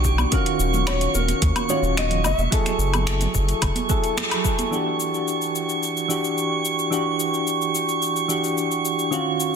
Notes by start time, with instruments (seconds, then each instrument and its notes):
Already playing: analog synth bass B1, synth keys E3 D4 F#4 G4, synth texture C#6
0.04 nylon-string guitar G4, kick, cabasa
0.18 high conga, cabasa, low woodblock
0.31 synth keys D#3 C#4 F4 F#4, nylon-string guitar A#4, kick, closed hi-hat, muted conga, cabasa
0.46 closed hi-hat
0.59 analog synth bass D#1, cabasa
0.74 muted conga, high conga, low conga, cabasa
0.87 nylon-string guitar C#5, finger snap, closed hi-hat, cabasa, low woodblock
1.01 closed hi-hat, cabasa
1.14 analog synth bass D#1, nylon-string guitar A#4, high conga, cabasa
1.28 closed hi-hat, muted conga, cabasa
1.42 analog synth bass D#2, kick, closed hi-hat, cabasa
1.56 closed hi-hat, high conga, cabasa, low woodblock
1.69 synth keys D#3 C#4 F4 F#4, nylon-string guitar C#5, muted conga, cabasa
1.82 analog synth bass D#1, cabasa
1.97 nylon-string guitar D#5, finger snap, closed hi-hat, high conga, cabasa
2.10 closed hi-hat, low conga
2.24 analog synth bass F#1, nylon-string guitar E5, muted conga, cabasa, low woodblock
2.38 analog synth bass E1, high conga, cabasa
2.51 synth keys F#3 E4 G#4 A4, kick, closed hi-hat, cabasa
2.66 finger snap, closed hi-hat, muted conga, cabasa
2.78 analog synth bass F#1, cabasa
2.94 closed hi-hat, high conga, low conga, cabasa, low woodblock
3.07 finger snap, closed hi-hat, cabasa
3.21 closed hi-hat, muted conga, low conga, cabasa
3.35 analog synth bass F#1, kick, cabasa
3.49 closed hi-hat, cabasa
3.62 analog synth bass F#1, kick, closed hi-hat, muted conga, cabasa, low woodblock
3.76 closed hi-hat, high conga, cabasa
3.89 synth keys F#3 E4 G#4 A4, kick, cabasa
4.04 closed hi-hat, cabasa
4.17 finger snap, closed hi-hat, muted conga, high conga, cabasa
4.31 closed hi-hat, low conga, cabasa, low woodblock
4.44 synth keys F#3 E4 G#4 A4, kick, cabasa
4.58 closed hi-hat, muted conga, high conga, cabasa
4.71 synth keys E3 D4 F#4 G4, synth texture C#6, cabasa
5.00 cabasa
5.14 cabasa
5.28 cabasa
5.42 cabasa
5.55 cabasa
5.69 cabasa
5.83 cabasa
5.97 cabasa
6.08 synth keys E3 D4 F#4 G4, cabasa
6.24 cabasa
6.38 cabasa
6.65 cabasa
6.79 cabasa
6.90 synth keys E3 D4 F#4 G4, cabasa
7.20 cabasa
7.34 cabasa
7.47 cabasa
7.61 cabasa
7.75 cabasa
7.89 cabasa
8.02 cabasa
8.16 cabasa
8.28 synth keys E3 D4 F#4 G4, cabasa
8.44 cabasa
8.58 cabasa
8.71 cabasa
8.85 cabasa
8.99 cabasa
9.11 synth keys D#3 C#4 F4 F#4, cabasa
9.40 cabasa